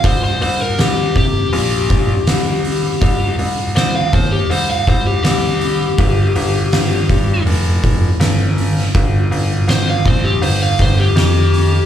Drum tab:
HH |o-o-o-o-o-o-o-o-|o-o-o-o-o-o-o-o-|o-o-o-o-o-o-o-o-|o-o-o-o-o-o-o-o-|
SD |----o-------o---|----o-------o---|----o-------o--o|----o-------o---|
BD |o-----o---o-----|o-----o---o-----|o-----o---o-----|o-----o---o-----|